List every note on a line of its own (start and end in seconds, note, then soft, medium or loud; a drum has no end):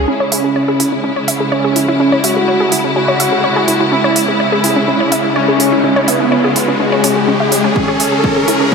0.08 8.75 C#3 medium
0.08 8.75 G#3 medium
0.08 1.43 C#4 loud
0.08 0.16 C#4 loud
0.08 7.74 E4 medium
0.08 riser medium
0.20 0.27 C#5 loud
0.32 0.37 E5 medium
0.32 open hi-hat loud
0.44 0.51 G#4 medium
0.56 0.64 C#5 loud
0.68 0.75 G#4 loud
0.80 0.91 E4 medium
0.80 open hi-hat medium
0.92 1.00 C#4 medium
1.04 1.09 C#4 medium
1.16 1.23 C#5 loud
1.28 1.33 E5 loud
1.28 open hi-hat loud
1.40 1.48 G#4 medium
1.52 2.15 C#4 medium
1.52 1.60 C#5 loud
1.64 1.72 G#4 loud
1.76 1.87 E4 medium
1.76 open hi-hat medium
1.88 1.96 E4 loud
2.00 2.08 C#4 loud
2.12 2.20 C#5 loud
2.24 2.87 F#4 loud
2.24 2.29 E5 medium
2.24 open hi-hat loud
2.36 2.44 G#4 medium
2.48 2.56 C#5 loud
2.60 2.68 G#4 loud
2.72 2.83 E4 medium
2.72 open hi-hat medium
2.84 2.91 C#4 medium
2.96 3.01 C#4 medium
2.96 3.83 F#4 loud
3.08 3.15 C#5 loud
3.20 3.25 E5 loud
3.20 open hi-hat loud
3.32 3.39 G#4 medium
3.44 3.52 C#5 loud
3.56 3.63 G#4 loud
3.68 3.79 E4 medium
3.68 open hi-hat loud
3.80 3.87 E4 loud
3.92 4.00 C#4 loud
3.92 5.27 E4 loud
4.04 4.11 C#5 loud
4.16 4.21 E5 medium
4.16 open hi-hat loud
4.28 4.35 G#4 medium
4.40 4.48 C#5 loud
4.52 4.59 G#4 loud
4.64 4.75 E4 medium
4.64 open hi-hat medium
4.76 4.83 C#4 medium
4.88 4.93 C#4 medium
5.00 5.08 C#5 loud
5.12 5.17 E5 loud
5.12 open hi-hat loud
5.24 5.31 G#4 medium
5.36 5.99 C#4 loud
5.36 5.44 C#5 loud
5.48 5.55 G#4 loud
5.60 5.71 E4 medium
5.60 open hi-hat loud
5.72 5.79 E4 loud
5.84 5.92 C#4 loud
5.96 6.03 C#5 loud
6.08 6.71 B3 loud
6.08 6.12 E5 medium
6.08 open hi-hat loud
6.20 6.27 G#4 medium
6.32 6.40 C#5 loud
6.44 6.51 G#4 loud
6.56 6.67 E4 medium
6.56 open hi-hat medium
6.68 6.75 C#4 medium
6.80 7.67 G#3 loud
6.80 6.85 C#4 medium
6.92 6.99 C#5 loud
7.04 7.15 C#4 loud
7.04 open hi-hat loud
7.16 7.23 G#4 medium
7.28 7.39 C#4 medium
7.40 7.45 E5 medium
7.52 7.60 C#4 medium
7.52 open hi-hat loud
7.64 7.71 C#4 loud
7.76 8.75 C#4 loud
7.76 7.84 C#4 loud
7.76 8.75 G#4 medium
7.76 kick loud
7.88 7.95 C#5 loud
8.00 8.05 E5 medium
8.00 open hi-hat loud
8.12 8.20 G#4 medium
8.24 8.32 C#5 loud
8.24 kick loud
8.36 8.43 G#4 loud
8.48 8.59 E4 medium
8.48 open hi-hat medium
8.60 8.68 C#4 medium